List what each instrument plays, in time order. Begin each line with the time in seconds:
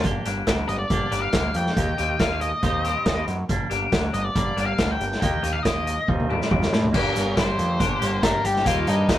0.03 picked electric bass G1, overdriven electric guitar A#3 D4 G4, kick, closed hi-hat
0.25 picked electric bass G1, clean electric guitar G3 A#3 D4 G4, overdriven electric guitar A#3 D4, closed hi-hat
0.47 picked electric bass D2, clean electric guitar G3 A#3 D4 G4, overdriven electric guitar A#3 D4, kick, snare, closed hi-hat
0.68 picked electric bass G1, overdriven electric guitar A#3 D4, lead electric guitar D#5, closed hi-hat
0.79 lead electric guitar D5
0.90 picked electric bass G1, overdriven electric guitar A#3 D4 G4, kick, closed hi-hat
1.11 picked electric bass G1, clean electric guitar G3 A#3 D4 G4, overdriven electric guitar A#3 D4, closed hi-hat
1.22 lead electric guitar F5
1.33 picked electric bass D2, clean electric guitar G3 A#3 D4 G4, overdriven electric guitar A#3 D4, kick, snare, closed hi-hat
1.54 picked electric bass F2, overdriven electric guitar A#3 D4, lead electric guitar G5, closed hi-hat
1.66 snare
1.76 picked electric bass D#2, overdriven electric guitar A#3 D#4 G4, kick, closed hi-hat
1.97 picked electric bass D#2, clean electric guitar D#3 A#3 D#4 G4, overdriven electric guitar A#3 D#4, closed hi-hat
2.19 picked electric bass D#2, clean electric guitar D#3 A#3 D#4 G4, overdriven electric guitar A#3 D#4, lead electric guitar F5, kick, snare, closed hi-hat
2.40 overdriven electric guitar A#3 D#4, lead electric guitar D#5, closed hi-hat
2.62 picked electric bass D#2, overdriven electric guitar C4 D#4 G4, kick, closed hi-hat
2.84 clean electric guitar D#3 G3 C4 G4, overdriven electric guitar C4 D#4, closed hi-hat
3.06 picked electric bass D#2, clean electric guitar D#3 G3 C4 G4, overdriven electric guitar C4 D#4, kick, snare, closed hi-hat
3.27 picked electric bass F#2, overdriven electric guitar C4 D#4, closed hi-hat
3.49 picked electric bass G1, overdriven electric guitar G3 A#3 D4, kick, closed hi-hat
3.70 picked electric bass G1, overdriven electric guitar G3 A#3, clean electric guitar G3 A#3 D4 G4, closed hi-hat
3.92 picked electric bass D2, clean electric guitar G3 A#3 D4 G4, overdriven electric guitar G3 A#3, kick, snare, closed hi-hat
4.13 picked electric bass G1, overdriven electric guitar G3 A#3, lead electric guitar D#5, closed hi-hat
4.24 lead electric guitar D5
4.35 picked electric bass G1, overdriven electric guitar G3 A#3 D4, kick, closed hi-hat
4.56 picked electric bass G1, overdriven electric guitar G3 A#3, clean electric guitar G3 A#3 D4 G4, closed hi-hat
4.66 lead electric guitar F5
4.78 picked electric bass D2, clean electric guitar G3 A#3 D4 G4, overdriven electric guitar G3 A#3, kick, snare, closed hi-hat
4.91 lead electric guitar G5
4.99 picked electric bass G1, overdriven electric guitar G3 A#3, closed hi-hat
5.12 snare
5.20 picked electric bass D#2, overdriven electric guitar A#3 D#4 G4, lead electric guitar G5, kick, closed hi-hat
5.42 picked electric bass D#2, clean electric guitar D#3 A#3 D#4 G4, overdriven electric guitar A#3 D#4, closed hi-hat
5.53 lead electric guitar F5
5.63 picked electric bass D#2, clean electric guitar D#3 A#3 D#4 G4, overdriven electric guitar A#3 D#4, lead electric guitar D#5, kick, snare, closed hi-hat
5.87 overdriven electric guitar A#3 D#4, closed hi-hat
6.08 picked electric bass D#2, overdriven electric guitar G3 C4 D#4, kick, high tom
6.20 high tom
6.29 clean electric guitar D#3 G3 C4 G4, overdriven electric guitar G3 C4, mid tom
6.42 snare
6.50 picked electric bass D#2, clean electric guitar D#3 G3 C4 G4, overdriven electric guitar G3 C4, kick, mid tom
6.62 snare
6.72 picked electric bass A2, overdriven electric guitar G3 C4, snare
6.83 floor tom
6.92 picked electric bass G1, transistor combo organ D3 G3 A#3 G4, clean electric guitar G3 A#3 D4 G4, overdriven electric guitar A#3 D4 G4, kick, crash
7.16 picked electric bass G1, closed hi-hat
7.36 picked electric bass G1, clean electric guitar G3 A#3 D4 G4, lead electric guitar C5, kick, snare, closed hi-hat
7.59 picked electric bass F2, closed hi-hat
7.79 picked electric bass G1, clean electric guitar G3 A#3 D4 G4, kick, closed hi-hat
7.99 picked electric bass G1, overdriven electric guitar A#3 D4 G4, closed hi-hat
8.21 picked electric bass G1, overdriven electric guitar A#3 D4 G4, lead electric guitar A#4, kick, snare, closed hi-hat
8.44 picked electric bass G1, lead electric guitar G4, closed hi-hat
8.56 snare
8.65 picked electric bass D#2, transistor combo organ D#3, clean electric guitar G3 A#3 D#4 G4, overdriven electric guitar A#3 D#4 G4, lead electric guitar F4, kick, closed hi-hat
8.87 picked electric bass G2, lead electric guitar D#4, closed hi-hat
9.09 picked electric bass D#2, clean electric guitar G3 A#3 D#4 G4, kick, snare, closed hi-hat